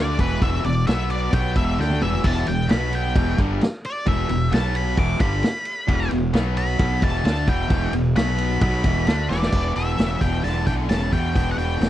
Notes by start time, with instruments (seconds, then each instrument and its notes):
Already playing: fingered electric bass D2, distorted electric guitar D3 A3 D4, lead electric guitar D5
0.18 fingered electric bass E1, distorted electric guitar E2 B2 E3, lead electric guitar B4, kick, ride
0.42 fingered electric bass E1, distorted electric guitar E2 B2 E3, lead electric guitar E5, kick, ride
0.64 fingered electric bass E1, distorted electric guitar E2 B2, lead electric guitar D5, ride
0.87 fingered electric bass B1, distorted electric guitar B2 F#3 B3, lead electric guitar E5, snare, ride
1.10 lead electric guitar D5, ride
1.32 fingered electric bass B1, distorted electric guitar B2 F#3 B3, lead electric guitar G5, kick, ride
1.55 fingered electric bass E1, distorted electric guitar E2 B2 E3, lead electric guitar E5, kick, ride
1.78 fingered electric bass D2, distorted electric guitar D3 A3 D4, lead electric guitar G5, snare
1.90 high tom
2.01 fingered electric bass E1, distorted electric guitar E2 B2 E3, lead electric guitar E5, mid tom
2.13 floor tom
2.24 fingered electric bass E1, distorted electric guitar E2 B2 E3, lead electric guitar A5, kick, crash
2.47 fingered electric bass E1, distorted electric guitar E2 B2, lead electric guitar G5, ride
2.69 fingered electric bass B1, distorted electric guitar B2 F#3 B3, lead electric guitar B5, snare, ride
2.93 lead electric guitar G5, ride
3.15 fingered electric bass E1, distorted electric guitar E2 B2 E3, kick, ride
3.38 fingered electric bass G1, distorted electric guitar G2 D3 G3, kick, ride
3.61 snare, ride
3.84 lead electric guitar D5, ride
4.06 fingered electric bass E1, distorted electric guitar E2 B2 E3, lead electric guitar E5, kick, ride
4.29 fingered electric bass E1, distorted electric guitar E2 B2, ride
4.52 fingered electric bass B1, distorted electric guitar B2 F#3 B3, lead electric guitar A5, snare, ride
4.75 lead electric guitar B5, ride
4.97 fingered electric bass E1, distorted electric guitar E2 B2 E3, lead electric guitar D6, kick, ride
5.20 fingered electric bass G1, distorted electric guitar G2 D3 G3, lead electric guitar B5, kick, ride
5.43 snare, ride
5.65 ride
5.88 fingered electric bass E1, distorted electric guitar E2 B2 E3, kick, ride
6.11 fingered electric bass E1, distorted electric guitar E2 B2, ride
6.33 fingered electric bass B1, distorted electric guitar B2 F#3 B3, snare, ride
6.57 lead electric guitar B5, ride
6.79 fingered electric bass B1, distorted electric guitar B2 F#3 B3, kick, ride
7.02 fingered electric bass E1, distorted electric guitar E2 B2 E3, lead electric guitar A5, kick, ride
7.24 fingered electric bass D2, distorted electric guitar D3 A3 D4, lead electric guitar A5, snare, ride
7.48 fingered electric bass E1, distorted electric guitar E2 B2 E3, lead electric guitar G5, kick, ride
7.70 fingered electric bass E1, distorted electric guitar E2 B2 E3, kick, ride
7.93 fingered electric bass E1, distorted electric guitar E2 B2, ride
8.16 fingered electric bass B1, distorted electric guitar B2 F#3 B3, lead electric guitar B5, snare, ride
8.38 ride
8.61 fingered electric bass B1, distorted electric guitar B2 F#3 B3, lead electric guitar B5, kick, ride
8.84 fingered electric bass E1, distorted electric guitar E2 B2 E3, kick, ride
9.06 fingered electric bass D2, distorted electric guitar D3 A3 D4, snare, ride
9.29 fingered electric bass E1, distorted electric guitar E2 B2 E3, lead electric guitar D5, snare
9.42 snare
9.52 fingered electric bass E1, distorted electric guitar E2 B2, kick, crash
9.75 fingered electric bass E1, distorted electric guitar E2 B2, lead electric guitar E5, open hi-hat
9.98 fingered electric bass E1, distorted electric guitar E2 C#3, snare, open hi-hat
10.21 fingered electric bass E1, distorted electric guitar E2 B2, lead electric guitar G5, kick, open hi-hat
10.44 fingered electric bass E1, distorted electric guitar E2 D3, lead electric guitar A5, open hi-hat
10.66 fingered electric bass B1, distorted electric guitar E2 D3, lead electric guitar G5, kick, open hi-hat
10.89 fingered electric bass E1, distorted electric guitar E2 C#3, lead electric guitar A5, snare, open hi-hat
11.12 distorted electric guitar E2 B2, fingered electric bass E2, lead electric guitar G5, kick, open hi-hat
11.35 fingered electric bass E1, distorted electric guitar E2 B2, lead electric guitar G5, kick, open hi-hat
11.52 lead electric guitar F#5
11.57 fingered electric bass E1, distorted electric guitar E2 B2, lead electric guitar G5, open hi-hat
11.80 fingered electric bass E1, distorted electric guitar E2 C#3, snare, open hi-hat